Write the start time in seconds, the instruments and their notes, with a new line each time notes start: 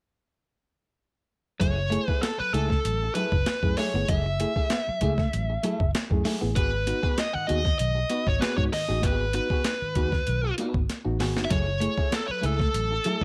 1.60 fingered electric bass F#1, clean electric guitar F#3 A3 E4 G#4, reed electric piano F#3, lead electric guitar C#5, kick, closed hi-hat
1.76 muted clean electric guitar stroke
1.90 clean electric guitar A3, reed electric piano A3 E4 G#4, muted clean electric guitar stroke, closed hi-hat
2.08 clean electric guitar A3 E4 G#4, reed electric piano E4 G#4, lead electric guitar B4, kick
2.22 clean electric guitar B3, reed electric piano E4 G#4, lead electric guitar A4, muted clean electric guitar stroke, snare, closed hi-hat
2.38 reed electric piano F#3, lead electric guitar B4, muted clean electric guitar stroke, muted fingered electric bass stroke
2.54 fingered electric bass C#2, clean electric guitar A3 E4 G#4, reed electric piano A3 E4 G#4, lead electric guitar A4, closed hi-hat
2.69 clean electric guitar A3, muted clean electric guitar stroke, kick, snare
2.85 fingered electric bass A1, reed electric piano F#3, closed hi-hat
3.02 muted clean electric guitar stroke
3.15 clean electric guitar F#3 A3 E4 A4, reed electric piano A3 E4 G#4, lead electric guitar B4, closed hi-hat
3.32 fingered electric bass F#1, muted clean electric guitar stroke, kick
3.46 muted clean electric guitar stroke, snare, closed hi-hat
3.63 fingered electric bass F#2, reed electric piano A3 E4 G#4, muted clean electric guitar stroke, kick
3.77 reed electric piano F#3, clean electric guitar A3 E4 G#4, lead electric guitar C#5, snare, open hi-hat
3.94 fingered electric bass G1, reed electric piano A3 E4 G#4, clean electric guitar B3, muted clean electric guitar stroke
4.08 fingered electric bass F#1, reed electric piano F#3, clean electric guitar F#3 A3 E4 G#4, lead electric guitar E5, kick, closed hi-hat
4.26 muted clean electric guitar stroke
4.40 reed electric piano A3 E4 G#4, clean electric guitar A3, muted clean electric guitar stroke, closed hi-hat
4.56 clean electric guitar A3 E4 G#4, kick
4.70 clean electric guitar B3, reed electric piano E4 G#4, muted clean electric guitar stroke, snare, closed hi-hat
4.88 reed electric piano F#3, muted fingered electric bass stroke, muted clean electric guitar stroke
5.01 fingered electric bass C#2, clean electric guitar A3 E4 G#4, reed electric piano A3 E4 G#4, kick, closed hi-hat
5.18 clean electric guitar A3, muted clean electric guitar stroke, kick, snare
5.33 fingered electric bass A1, reed electric piano F#3, closed hi-hat
5.50 muted clean electric guitar stroke
5.63 clean electric guitar F#3 A3 E4 A4, reed electric piano A3 E4 G#4, closed hi-hat
5.80 fingered electric bass F#1, muted clean electric guitar stroke, kick
5.95 muted clean electric guitar stroke, snare, closed hi-hat
6.10 fingered electric bass F#2, reed electric piano A3 E4 G#4, muted clean electric guitar stroke, kick
6.25 reed electric piano F#3, clean electric guitar A3 E4 G#4, snare, open hi-hat
6.41 fingered electric bass A1, reed electric piano A3 E4 G#4, clean electric guitar B3, muted clean electric guitar stroke
6.56 fingered electric bass G#1, reed electric piano G#2 D#3, clean electric guitar B3 F#4 G#4, lead electric guitar B4, kick, closed hi-hat
6.87 reed electric piano B3 D#4 F#4, muted clean electric guitar stroke, closed hi-hat
7.03 clean electric guitar B3 F#4 G#4, kick
7.17 reed electric piano D#4 F#4, lead electric guitar D#5, muted clean electric guitar stroke, snare, closed hi-hat
7.33 reed electric piano G#2 D#3, lead electric guitar F#5, muted fingered electric bass stroke
7.47 fingered electric bass D#2, clean electric guitar B3 F#4 G#4, reed electric piano B3 D#4 F#4, lead electric guitar D#5, closed hi-hat
7.64 muted clean electric guitar stroke, kick, snare
7.79 fingered electric bass B1, reed electric piano G#2 D#3, lead electric guitar D#5, closed hi-hat
7.95 muted clean electric guitar stroke
8.10 clean electric guitar B3 F#4 B4, reed electric piano B3 D#4 F#4, closed hi-hat
8.26 fingered electric bass G#1, reed electric piano D#4 F#4, lead electric guitar C#5, muted clean electric guitar stroke, kick
8.40 clean electric guitar B3 F#4 G#4, lead electric guitar B4, snare, closed hi-hat
8.57 fingered electric bass G#2, reed electric piano B3 D#4 F#4, lead electric guitar C#5, kick
8.72 reed electric piano G#2 D#3, lead electric guitar D#5, muted clean electric guitar stroke, snare, open hi-hat
8.88 fingered electric bass A1, reed electric piano B3 D#4 F#4, clean electric guitar B3 F#4 G#4
9.02 fingered electric bass G#1, reed electric piano G#2 D#3, clean electric guitar B3 F#4 G#4, lead electric guitar B4, kick, closed hi-hat
9.33 reed electric piano B3 D#4 F#4, lead electric guitar B4, muted clean electric guitar stroke, closed hi-hat
9.50 clean electric guitar B3 F#4 G#4, kick
9.64 reed electric piano D#4 F#4, muted clean electric guitar stroke, snare, closed hi-hat
9.82 reed electric piano G#2 D#3, muted fingered electric bass stroke
9.95 fingered electric bass D#2, reed electric piano B3 D#4 F#4, clean electric guitar B3 F#4 G#4, kick, closed hi-hat
10.12 muted clean electric guitar stroke, kick, snare
10.27 fingered electric bass B1, reed electric piano G#2 D#3, closed hi-hat
10.43 muted clean electric guitar stroke
10.58 reed electric piano B3 D#4 F#4, clean electric guitar B3 F#4 B4, closed hi-hat
10.74 fingered electric bass G#1, muted clean electric guitar stroke, kick
10.89 snare, closed hi-hat
11.05 fingered electric bass A1, reed electric piano B3 D#4 F#4, muted clean electric guitar stroke
11.20 fingered electric bass G#1, reed electric piano G#2 D#3, clean electric guitar B3 F#4 G#4, snare, open hi-hat
11.36 fingered electric bass G1, reed electric piano B3 D#4 F#4, muted clean electric guitar stroke, snare
11.45 lead electric guitar E5
11.51 fingered electric bass F#1, clean electric guitar F#3 A3 E4 G#4, reed electric piano F#3, lead electric guitar C#5, kick, closed hi-hat
11.67 muted clean electric guitar stroke
11.80 clean electric guitar A3, reed electric piano A3 E4 G#4, muted clean electric guitar stroke, closed hi-hat
11.98 clean electric guitar A3 E4 G#4, kick
12.11 clean electric guitar B3, reed electric piano E4 G#4, lead electric guitar A4, muted clean electric guitar stroke, snare, closed hi-hat
12.27 reed electric piano F#3, lead electric guitar C#5, muted clean electric guitar stroke, muted fingered electric bass stroke
12.31 lead electric guitar B4
12.41 fingered electric bass C#2, clean electric guitar A3 E4 G#4, reed electric piano A3 E4 G#4, closed hi-hat
12.46 lead electric guitar A4
12.60 clean electric guitar A3, muted clean electric guitar stroke, kick, snare
12.74 fingered electric bass A1, reed electric piano F#3, closed hi-hat
12.91 muted clean electric guitar stroke
13.04 clean electric guitar F#3 A3 E4 A4, reed electric piano A3 E4 G#4, closed hi-hat